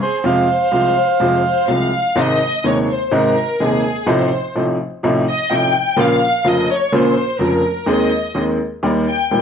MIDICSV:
0, 0, Header, 1, 4, 480
1, 0, Start_track
1, 0, Key_signature, -4, "major"
1, 0, Tempo, 477327
1, 255, Time_signature, 4, 2, 24, 8
1, 9471, End_track
2, 0, Start_track
2, 0, Title_t, "Bandoneon"
2, 0, Program_c, 0, 23
2, 22, Note_on_c, 0, 72, 65
2, 242, Note_off_c, 0, 72, 0
2, 262, Note_on_c, 0, 77, 70
2, 1662, Note_off_c, 0, 77, 0
2, 9471, End_track
3, 0, Start_track
3, 0, Title_t, "Violin section"
3, 0, Program_c, 1, 48
3, 24, Note_on_c, 1, 68, 56
3, 243, Note_off_c, 1, 68, 0
3, 266, Note_on_c, 1, 72, 61
3, 1449, Note_off_c, 1, 72, 0
3, 1461, Note_on_c, 1, 72, 65
3, 1684, Note_off_c, 1, 72, 0
3, 1700, Note_on_c, 1, 77, 73
3, 2184, Note_off_c, 1, 77, 0
3, 2207, Note_on_c, 1, 75, 84
3, 2677, Note_off_c, 1, 75, 0
3, 2683, Note_on_c, 1, 73, 73
3, 2832, Note_off_c, 1, 73, 0
3, 2844, Note_on_c, 1, 73, 49
3, 2905, Note_off_c, 1, 73, 0
3, 2936, Note_on_c, 1, 72, 73
3, 3069, Note_off_c, 1, 72, 0
3, 3081, Note_on_c, 1, 72, 50
3, 3148, Note_off_c, 1, 72, 0
3, 3170, Note_on_c, 1, 70, 75
3, 3638, Note_off_c, 1, 70, 0
3, 3650, Note_on_c, 1, 68, 69
3, 4117, Note_off_c, 1, 68, 0
3, 4125, Note_on_c, 1, 72, 66
3, 4594, Note_off_c, 1, 72, 0
3, 5320, Note_on_c, 1, 75, 80
3, 5533, Note_off_c, 1, 75, 0
3, 5565, Note_on_c, 1, 79, 90
3, 6030, Note_off_c, 1, 79, 0
3, 6031, Note_on_c, 1, 77, 88
3, 6502, Note_off_c, 1, 77, 0
3, 6516, Note_on_c, 1, 75, 80
3, 6744, Note_off_c, 1, 75, 0
3, 6753, Note_on_c, 1, 73, 84
3, 6983, Note_off_c, 1, 73, 0
3, 6992, Note_on_c, 1, 72, 83
3, 7462, Note_off_c, 1, 72, 0
3, 7468, Note_on_c, 1, 70, 69
3, 7925, Note_on_c, 1, 75, 72
3, 7939, Note_off_c, 1, 70, 0
3, 8408, Note_off_c, 1, 75, 0
3, 9133, Note_on_c, 1, 79, 80
3, 9355, Note_off_c, 1, 79, 0
3, 9373, Note_on_c, 1, 79, 81
3, 9471, Note_off_c, 1, 79, 0
3, 9471, End_track
4, 0, Start_track
4, 0, Title_t, "Upright piano"
4, 0, Program_c, 2, 0
4, 239, Note_on_c, 2, 48, 56
4, 240, Note_on_c, 2, 53, 63
4, 241, Note_on_c, 2, 41, 61
4, 242, Note_on_c, 2, 56, 51
4, 244, Note_on_c, 2, 65, 63
4, 449, Note_off_c, 2, 48, 0
4, 450, Note_off_c, 2, 41, 0
4, 451, Note_off_c, 2, 53, 0
4, 451, Note_off_c, 2, 56, 0
4, 452, Note_off_c, 2, 65, 0
4, 720, Note_on_c, 2, 48, 45
4, 722, Note_on_c, 2, 36, 45
4, 722, Note_on_c, 2, 56, 34
4, 725, Note_on_c, 2, 53, 33
4, 730, Note_on_c, 2, 65, 40
4, 930, Note_off_c, 2, 36, 0
4, 930, Note_off_c, 2, 56, 0
4, 931, Note_off_c, 2, 48, 0
4, 932, Note_off_c, 2, 53, 0
4, 934, Note_off_c, 2, 65, 0
4, 1204, Note_on_c, 2, 48, 54
4, 1206, Note_on_c, 2, 56, 48
4, 1208, Note_on_c, 2, 41, 56
4, 1209, Note_on_c, 2, 53, 57
4, 1212, Note_on_c, 2, 65, 55
4, 1412, Note_off_c, 2, 48, 0
4, 1413, Note_off_c, 2, 56, 0
4, 1414, Note_off_c, 2, 41, 0
4, 1415, Note_off_c, 2, 53, 0
4, 1416, Note_off_c, 2, 65, 0
4, 1688, Note_on_c, 2, 48, 43
4, 1688, Note_on_c, 2, 53, 32
4, 1692, Note_on_c, 2, 36, 43
4, 1694, Note_on_c, 2, 56, 34
4, 1695, Note_on_c, 2, 65, 38
4, 1897, Note_off_c, 2, 53, 0
4, 1899, Note_off_c, 2, 36, 0
4, 1900, Note_off_c, 2, 48, 0
4, 1900, Note_off_c, 2, 56, 0
4, 1901, Note_off_c, 2, 65, 0
4, 2167, Note_on_c, 2, 48, 58
4, 2168, Note_on_c, 2, 51, 55
4, 2169, Note_on_c, 2, 44, 65
4, 2171, Note_on_c, 2, 32, 68
4, 2175, Note_on_c, 2, 56, 51
4, 2175, Note_on_c, 2, 63, 61
4, 2378, Note_off_c, 2, 44, 0
4, 2378, Note_off_c, 2, 48, 0
4, 2378, Note_off_c, 2, 51, 0
4, 2380, Note_off_c, 2, 32, 0
4, 2381, Note_off_c, 2, 56, 0
4, 2382, Note_off_c, 2, 63, 0
4, 2652, Note_on_c, 2, 27, 44
4, 2654, Note_on_c, 2, 48, 38
4, 2655, Note_on_c, 2, 39, 48
4, 2655, Note_on_c, 2, 56, 38
4, 2658, Note_on_c, 2, 51, 37
4, 2660, Note_on_c, 2, 63, 47
4, 2861, Note_off_c, 2, 27, 0
4, 2862, Note_off_c, 2, 39, 0
4, 2862, Note_off_c, 2, 48, 0
4, 2862, Note_off_c, 2, 56, 0
4, 2864, Note_off_c, 2, 51, 0
4, 2865, Note_off_c, 2, 63, 0
4, 3130, Note_on_c, 2, 48, 58
4, 3133, Note_on_c, 2, 32, 66
4, 3133, Note_on_c, 2, 51, 54
4, 3138, Note_on_c, 2, 56, 55
4, 3138, Note_on_c, 2, 63, 67
4, 3139, Note_on_c, 2, 44, 67
4, 3340, Note_off_c, 2, 48, 0
4, 3341, Note_off_c, 2, 32, 0
4, 3341, Note_off_c, 2, 51, 0
4, 3344, Note_off_c, 2, 44, 0
4, 3344, Note_off_c, 2, 56, 0
4, 3344, Note_off_c, 2, 63, 0
4, 3622, Note_on_c, 2, 48, 44
4, 3622, Note_on_c, 2, 51, 38
4, 3624, Note_on_c, 2, 27, 49
4, 3625, Note_on_c, 2, 39, 49
4, 3625, Note_on_c, 2, 56, 36
4, 3629, Note_on_c, 2, 63, 47
4, 3825, Note_off_c, 2, 48, 0
4, 3825, Note_off_c, 2, 51, 0
4, 3826, Note_off_c, 2, 27, 0
4, 3826, Note_off_c, 2, 39, 0
4, 3827, Note_off_c, 2, 56, 0
4, 3828, Note_off_c, 2, 63, 0
4, 4087, Note_on_c, 2, 48, 66
4, 4088, Note_on_c, 2, 53, 58
4, 4090, Note_on_c, 2, 45, 72
4, 4090, Note_on_c, 2, 57, 57
4, 4092, Note_on_c, 2, 33, 75
4, 4092, Note_on_c, 2, 63, 68
4, 4297, Note_off_c, 2, 48, 0
4, 4297, Note_off_c, 2, 53, 0
4, 4298, Note_off_c, 2, 57, 0
4, 4299, Note_off_c, 2, 45, 0
4, 4300, Note_off_c, 2, 33, 0
4, 4300, Note_off_c, 2, 63, 0
4, 4578, Note_on_c, 2, 48, 39
4, 4581, Note_on_c, 2, 57, 37
4, 4582, Note_on_c, 2, 33, 46
4, 4582, Note_on_c, 2, 53, 36
4, 4583, Note_on_c, 2, 45, 48
4, 4587, Note_on_c, 2, 63, 48
4, 4782, Note_off_c, 2, 48, 0
4, 4784, Note_off_c, 2, 33, 0
4, 4784, Note_off_c, 2, 53, 0
4, 4784, Note_off_c, 2, 57, 0
4, 4785, Note_off_c, 2, 45, 0
4, 4787, Note_off_c, 2, 63, 0
4, 5060, Note_on_c, 2, 53, 53
4, 5064, Note_on_c, 2, 48, 65
4, 5065, Note_on_c, 2, 45, 73
4, 5067, Note_on_c, 2, 63, 70
4, 5068, Note_on_c, 2, 33, 70
4, 5068, Note_on_c, 2, 57, 55
4, 5262, Note_off_c, 2, 53, 0
4, 5264, Note_off_c, 2, 48, 0
4, 5265, Note_off_c, 2, 45, 0
4, 5265, Note_off_c, 2, 63, 0
4, 5266, Note_off_c, 2, 33, 0
4, 5266, Note_off_c, 2, 57, 0
4, 5534, Note_on_c, 2, 48, 42
4, 5537, Note_on_c, 2, 57, 40
4, 5538, Note_on_c, 2, 45, 50
4, 5538, Note_on_c, 2, 53, 38
4, 5539, Note_on_c, 2, 33, 50
4, 5545, Note_on_c, 2, 63, 48
4, 5737, Note_off_c, 2, 48, 0
4, 5739, Note_off_c, 2, 53, 0
4, 5739, Note_off_c, 2, 57, 0
4, 5740, Note_off_c, 2, 33, 0
4, 5740, Note_off_c, 2, 45, 0
4, 5743, Note_off_c, 2, 63, 0
4, 5999, Note_on_c, 2, 53, 59
4, 6000, Note_on_c, 2, 34, 75
4, 6000, Note_on_c, 2, 49, 67
4, 6002, Note_on_c, 2, 46, 81
4, 6006, Note_on_c, 2, 58, 59
4, 6010, Note_on_c, 2, 65, 71
4, 6209, Note_off_c, 2, 34, 0
4, 6209, Note_off_c, 2, 49, 0
4, 6209, Note_off_c, 2, 53, 0
4, 6210, Note_off_c, 2, 46, 0
4, 6212, Note_off_c, 2, 58, 0
4, 6215, Note_off_c, 2, 65, 0
4, 6478, Note_on_c, 2, 29, 52
4, 6478, Note_on_c, 2, 53, 39
4, 6479, Note_on_c, 2, 41, 51
4, 6479, Note_on_c, 2, 49, 42
4, 6483, Note_on_c, 2, 58, 39
4, 6485, Note_on_c, 2, 65, 52
4, 6687, Note_off_c, 2, 29, 0
4, 6687, Note_off_c, 2, 53, 0
4, 6688, Note_off_c, 2, 41, 0
4, 6688, Note_off_c, 2, 49, 0
4, 6690, Note_off_c, 2, 58, 0
4, 6691, Note_off_c, 2, 65, 0
4, 6963, Note_on_c, 2, 46, 71
4, 6963, Note_on_c, 2, 49, 62
4, 6964, Note_on_c, 2, 34, 77
4, 6967, Note_on_c, 2, 53, 59
4, 6967, Note_on_c, 2, 58, 55
4, 6968, Note_on_c, 2, 65, 66
4, 7169, Note_off_c, 2, 49, 0
4, 7170, Note_off_c, 2, 34, 0
4, 7170, Note_off_c, 2, 46, 0
4, 7171, Note_off_c, 2, 58, 0
4, 7172, Note_off_c, 2, 53, 0
4, 7172, Note_off_c, 2, 65, 0
4, 7431, Note_on_c, 2, 49, 43
4, 7433, Note_on_c, 2, 41, 52
4, 7436, Note_on_c, 2, 53, 38
4, 7436, Note_on_c, 2, 65, 44
4, 7437, Note_on_c, 2, 29, 51
4, 7440, Note_on_c, 2, 58, 41
4, 7643, Note_off_c, 2, 49, 0
4, 7644, Note_off_c, 2, 41, 0
4, 7645, Note_off_c, 2, 65, 0
4, 7646, Note_off_c, 2, 29, 0
4, 7646, Note_off_c, 2, 53, 0
4, 7648, Note_off_c, 2, 58, 0
4, 7907, Note_on_c, 2, 51, 69
4, 7909, Note_on_c, 2, 56, 55
4, 7914, Note_on_c, 2, 39, 71
4, 7915, Note_on_c, 2, 60, 56
4, 7918, Note_on_c, 2, 68, 65
4, 8122, Note_off_c, 2, 56, 0
4, 8123, Note_off_c, 2, 51, 0
4, 8124, Note_off_c, 2, 39, 0
4, 8124, Note_off_c, 2, 60, 0
4, 8126, Note_off_c, 2, 68, 0
4, 8393, Note_on_c, 2, 51, 50
4, 8396, Note_on_c, 2, 39, 49
4, 8397, Note_on_c, 2, 56, 35
4, 8397, Note_on_c, 2, 68, 44
4, 8400, Note_on_c, 2, 60, 35
4, 8604, Note_off_c, 2, 39, 0
4, 8605, Note_off_c, 2, 56, 0
4, 8605, Note_off_c, 2, 68, 0
4, 8606, Note_off_c, 2, 51, 0
4, 8606, Note_off_c, 2, 60, 0
4, 8877, Note_on_c, 2, 51, 71
4, 8878, Note_on_c, 2, 39, 71
4, 8880, Note_on_c, 2, 55, 56
4, 8883, Note_on_c, 2, 58, 53
4, 8883, Note_on_c, 2, 67, 65
4, 9086, Note_off_c, 2, 39, 0
4, 9087, Note_off_c, 2, 55, 0
4, 9088, Note_off_c, 2, 51, 0
4, 9088, Note_off_c, 2, 58, 0
4, 9088, Note_off_c, 2, 67, 0
4, 9364, Note_on_c, 2, 51, 41
4, 9364, Note_on_c, 2, 55, 39
4, 9365, Note_on_c, 2, 34, 47
4, 9366, Note_on_c, 2, 58, 38
4, 9367, Note_on_c, 2, 46, 45
4, 9372, Note_on_c, 2, 67, 44
4, 9471, Note_off_c, 2, 34, 0
4, 9471, Note_off_c, 2, 46, 0
4, 9471, Note_off_c, 2, 51, 0
4, 9471, Note_off_c, 2, 55, 0
4, 9471, Note_off_c, 2, 58, 0
4, 9471, Note_off_c, 2, 67, 0
4, 9471, End_track
0, 0, End_of_file